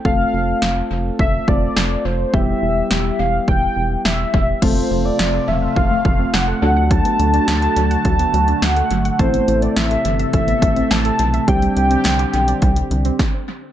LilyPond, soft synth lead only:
\new Staff \with { instrumentName = "Soft synth lead" } { \time 4/4 \key f \lydian \tempo 4 = 105 f''4. r8 e''8 d''4 c''8 | e''4. f''8 g''4 e''4 | c''8. d''8. e''8 f''4 fis''4 | a''2. fis''4 |
c''8. d''16 e''4 e''4 a''4 | g''2. r4 | }